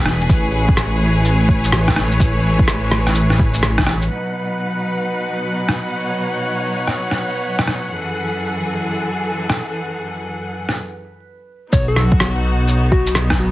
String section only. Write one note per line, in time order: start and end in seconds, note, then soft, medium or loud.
0.00 0.26 E3 medium
0.00 0.26 B3 medium
0.00 0.26 D4 medium
0.00 0.26 F#4 medium
0.00 4.07 G#4 medium
0.30 4.07 A3 medium
0.30 4.07 E4 medium
0.30 4.07 B4 medium
0.30 4.07 C#5 medium
4.10 7.88 B2 medium
4.10 7.88 F#3 medium
4.10 7.88 D#4 medium
4.10 5.99 B4 medium
4.10 10.73 F#5 medium
6.01 7.89 C#5 medium
7.91 10.74 F#2 medium
7.91 10.74 E3 medium
7.91 10.74 G#4 medium
7.91 10.74 A4 medium
11.72 13.51 B3 medium
11.72 13.51 D#4 medium
11.72 13.51 F#4 medium